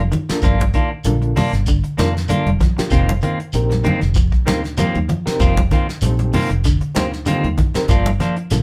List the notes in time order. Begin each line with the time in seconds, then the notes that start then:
0.00 F1
0.12 D#3, muted clean electric guitar stroke, closed hi-hat, low conga, shekere
0.29 A#3 D4 F4 A4, muted clean electric guitar stroke, muted fingered electric bass stroke, snare
0.42 G1 F3 A#3 D4 F4, kick, closed hi-hat, shekere
0.60 kick, closed hi-hat, high conga
0.74 D#3 A#3 D4 F4, kick, closed hi-hat, shekere
0.91 muted clean electric guitar stroke
1.04 A#1 D3 A#3 D4 F4 A4, muted clean electric guitar stroke, closed hi-hat, high conga, shekere
1.22 muted clean electric guitar stroke, closed hi-hat
1.36 C3 A#3 D4 F4, snare, open hi-hat, high conga, low conga, shekere
1.53 G1, muted clean electric guitar stroke, snare, closed hi-hat
1.66 D3, kick, closed hi-hat, shekere
1.84 muted clean electric guitar stroke, closed hi-hat
1.97 F2 D#3 A#3 D4 F4 A#4, snare, closed hi-hat, high conga, shekere
2.17 snare
2.28 D3 A#3 D4 F4 A4, closed hi-hat, high conga, low conga, shekere
2.46 F1, closed hi-hat, high conga
2.60 F3, muted clean electric guitar stroke, kick, snare, closed hi-hat, low conga, shekere
2.77 A#3 D4 F4 G4, muted clean electric guitar stroke, muted fingered electric bass stroke, snare, closed hi-hat
2.90 F1 C3 D#3 A#3 C4 F4, kick, snare, closed hi-hat, shekere
3.09 closed hi-hat, high conga
3.21 D#3 A#3 C4 F4, closed hi-hat, low conga, shekere
3.40 muted clean electric guitar stroke, closed hi-hat
3.53 A#1 C4 D#4 G4 A#4, muted clean electric guitar stroke, closed hi-hat, shekere
3.70 muted clean electric guitar stroke, snare, closed hi-hat, high conga
3.84 D3 D#3 A#3 C4, muted clean electric guitar stroke, closed hi-hat, high conga, low conga, shekere
4.01 F1, muted clean electric guitar stroke, snare, closed hi-hat
4.15 F3, kick, closed hi-hat, shekere
4.32 muted clean electric guitar stroke, kick, closed hi-hat
4.46 D2 D#3 A#3 C4 D#4 F4 G4 A#4, snare, closed hi-hat, high conga, shekere
4.64 muted clean electric guitar stroke, snare, closed hi-hat
4.77 D#3 F3 A#3 C4 D#4 F4 G4 A#4, closed hi-hat, high conga, low conga, shekere
4.95 D#2, closed hi-hat, high conga
5.09 F3, muted clean electric guitar stroke, closed hi-hat, low conga, shekere
5.26 C4 D#4 G4 A#4, muted clean electric guitar stroke, muted fingered electric bass stroke, snare
5.39 F1 D#3 F3 A#3 C4 F4, kick, closed hi-hat, shekere
5.57 kick, closed hi-hat, high conga
5.71 D#3 A#3 C4 F4, kick, snare, closed hi-hat, low conga, shekere
5.88 muted clean electric guitar stroke, snare
6.01 A#1 C4 D#4 G4 A4, muted clean electric guitar stroke, closed hi-hat, high conga, shekere
6.19 muted clean electric guitar stroke, closed hi-hat, high conga
6.33 C3 D#3 A#3 C4 F4, open hi-hat, high conga, low conga, shekere
6.50 F1, muted clean electric guitar stroke, closed hi-hat
6.64 D3, kick, snare, closed hi-hat, shekere
6.81 muted clean electric guitar stroke, closed hi-hat
6.95 D2 A#3 C4 D#4 F4 G4 C5, muted clean electric guitar stroke, snare, closed hi-hat, high conga, shekere
7.12 muted clean electric guitar stroke, snare
7.26 D3 D#3 A#3 C4 D#4 F4 G4 A4, closed hi-hat, high conga, shekere
7.44 D#2, closed hi-hat, high conga
7.57 D#3, muted clean electric guitar stroke, kick, closed hi-hat, low conga, shekere
7.74 C4 D#4 G4 A#4, muted clean electric guitar stroke, muted fingered electric bass stroke, snare, closed hi-hat
7.88 G1 F3 A#3 D4 F4, muted clean electric guitar stroke, kick, snare, closed hi-hat, shekere
8.06 closed hi-hat, high conga
8.20 F3 A#3 D4 F4, snare, closed hi-hat, low conga, shekere
8.36 muted clean electric guitar stroke, closed hi-hat
8.50 A#1 D3 A#3 D4 F4 A4, muted clean electric guitar stroke, snare, closed hi-hat, high conga, shekere